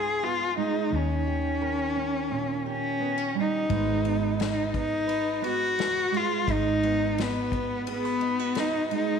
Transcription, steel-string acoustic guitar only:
0.00 0.92 G#2 medium
0.00 0.22 B3 medium
0.00 0.88 F4 medium
0.00 0.88 B4 medium
0.23 0.92 B3 medium
0.57 0.88 G#3 medium
0.90 3.65 D#3 medium
1.27 2.65 G4 medium
1.62 3.66 A#4 medium
1.96 2.99 C#4 medium
2.31 3.66 A#2 medium
2.66 3.66 G4 medium
3.00 3.18 B3 medium
3.18 3.70 C#4 medium
3.35 3.66 G3 medium
3.69 6.45 G#2 medium
3.69 6.11 G#3 medium
3.69 4.05 B3 medium
3.69 4.39 F#4 medium
3.69 5.07 B4 medium
4.06 4.74 B3 medium
4.39 4.57 D#4 medium
4.74 5.42 B3 medium
5.07 7.87 B4 medium
5.42 5.78 B3 medium
5.78 6.84 B3 medium
6.12 7.22 G#3 medium
6.47 9.20 G#2 medium
6.84 7.53 B3 medium
7.19 8.21 F#4 medium
7.53 8.56 B3 medium
7.88 8.05 G#4 medium
8.05 9.20 B4 medium
8.22 8.39 D#4 medium
8.39 9.20 F#4 soft
8.57 9.20 B3 medium
8.91 9.20 G#3 medium

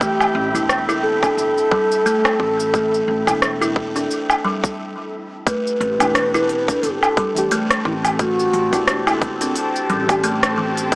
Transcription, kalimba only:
0.01 0.53 A3 medium
0.55 0.69 E4 medium
0.89 1.03 E4 loud
1.23 1.70 D4 medium
1.72 1.90 G3 medium
2.06 2.24 A3 loud
2.40 2.58 E3 medium
2.74 3.25 A3 medium
3.28 3.41 E4 medium
3.62 3.75 E4 loud
3.96 4.43 D4 medium
4.45 4.63 G3 medium
5.47 5.98 A3 medium
6.00 6.14 E4 medium
6.34 6.48 E4 loud
6.68 7.16 D4 medium
7.17 7.36 G3 medium
7.51 7.70 A3 loud
7.86 8.04 E3 medium
8.20 8.71 A3 medium
8.73 8.87 E4 medium
9.07 9.21 E4 medium
9.41 9.88 D4 medium
9.90 10.08 G3 medium
10.24 10.42 A3 loud
10.58 10.76 E3 medium
10.92 10.95 A3 medium

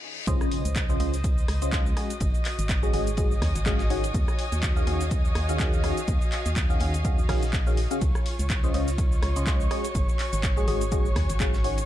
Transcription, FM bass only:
0.27 0.39 C#2 loud
0.65 0.97 C#2 medium
1.00 1.46 C#2 medium
1.48 1.94 C#2 medium
2.21 2.32 G#1 loud
2.59 2.91 G#1 medium
2.94 3.39 G#1 medium
3.42 3.53 D#2 loud
3.56 4.12 G#1 medium
4.14 4.26 D#2 loud
4.52 4.84 D#2 medium
4.87 5.33 D#2 medium
5.35 5.94 D#2 medium
6.08 6.19 D#2 loud
6.46 6.78 D#2 medium
6.81 7.26 D#2 medium
7.29 7.87 A#1 medium
8.02 8.13 C#2 loud
8.39 8.71 C#2 medium
8.74 9.20 C#2 medium
9.22 9.68 C#2 medium
9.95 10.07 G#1 loud
10.33 10.65 G#1 medium
10.68 11.13 G#1 medium
11.16 11.27 D#2 loud
11.30 11.86 G#1 medium

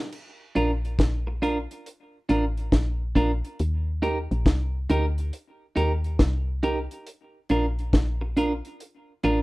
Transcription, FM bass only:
0.56 0.97 A#1 medium
0.99 1.67 A#1 medium
2.30 2.71 A1 medium
2.73 3.14 A#1 medium
3.16 3.43 A#1 loud
3.60 4.28 D#2 medium
4.31 4.46 A#1 loud
4.46 4.88 C2 medium
4.90 5.31 D2 loud
5.77 6.18 D#2 medium
6.20 6.88 C2 loud
7.50 7.92 A#1 medium
7.93 8.62 A#1 medium
9.24 9.43 A1 medium

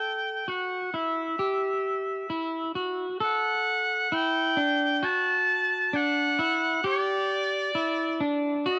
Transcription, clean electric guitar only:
0.00 0.47 A4 medium
0.48 0.93 F#4 medium
0.94 1.39 E4 medium
1.39 2.29 G4 medium
2.30 2.75 E4 medium
2.75 3.20 F#4 medium
3.20 4.12 A4 medium
4.12 4.57 E4 medium
4.57 5.02 D4 medium
5.03 5.94 F#4 medium
5.93 6.39 D4 medium
6.39 6.84 E4 medium
6.84 7.75 G4 medium
7.75 8.21 E4 medium
8.20 8.66 D4 medium
8.66 8.79 F#4 loud

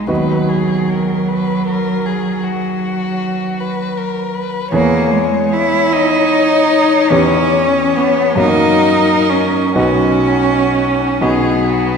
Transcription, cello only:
0.07 4.35 F#3 medium
4.73 5.13 A#3 medium
5.11 5.54 G#3 medium
5.53 5.94 E4 medium
5.93 7.13 D#4 medium
7.11 7.98 C#4 medium
7.96 8.38 B3 medium
8.39 9.32 D#4 medium
9.30 9.76 C#4 medium
9.76 11.23 C#4 medium
11.22 11.97 B3 medium

